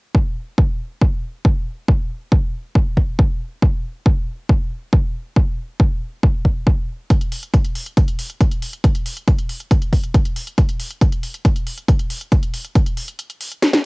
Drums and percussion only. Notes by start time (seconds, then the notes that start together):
0.15 kick
0.58 kick
1.01 kick
1.45 kick
1.88 kick
2.32 kick
2.75 kick
2.97 kick
3.19 kick
3.62 kick
4.06 kick
4.49 kick
4.93 kick
5.36 kick
5.80 kick
6.23 kick
6.45 kick
6.67 kick
7.10 kick, closed hi-hat
7.21 closed hi-hat
7.32 open hi-hat
7.43 closed hi-hat
7.54 kick, closed hi-hat
7.65 closed hi-hat
7.75 open hi-hat
7.86 closed hi-hat
7.97 kick, closed hi-hat
8.08 closed hi-hat
8.19 open hi-hat
8.30 closed hi-hat
8.41 kick, closed hi-hat
8.52 closed hi-hat
8.62 open hi-hat
8.73 closed hi-hat
8.84 kick, closed hi-hat
8.95 closed hi-hat
9.06 open hi-hat
9.17 closed hi-hat
9.28 kick, closed hi-hat
9.38 closed hi-hat
9.49 open hi-hat
9.60 closed hi-hat
9.71 kick, closed hi-hat
9.82 closed hi-hat
9.93 kick, open hi-hat
10.04 closed hi-hat
10.14 kick, closed hi-hat
10.25 closed hi-hat
10.36 open hi-hat
10.47 closed hi-hat
10.58 kick, closed hi-hat
10.69 closed hi-hat
10.80 open hi-hat
10.91 closed hi-hat
11.02 kick, closed hi-hat
11.12 closed hi-hat
11.23 open hi-hat
11.34 closed hi-hat
11.45 kick, closed hi-hat
11.56 closed hi-hat
11.67 open hi-hat
11.78 closed hi-hat
11.88 kick, closed hi-hat
11.99 closed hi-hat
12.10 open hi-hat
12.21 closed hi-hat
12.32 kick, closed hi-hat
12.43 closed hi-hat
12.54 open hi-hat
12.65 closed hi-hat
12.75 kick, closed hi-hat
12.86 closed hi-hat
12.97 open hi-hat
13.08 closed hi-hat
13.19 closed hi-hat
13.30 closed hi-hat
13.41 open hi-hat
13.52 closed hi-hat
13.62 snare, closed hi-hat
13.73 snare, closed hi-hat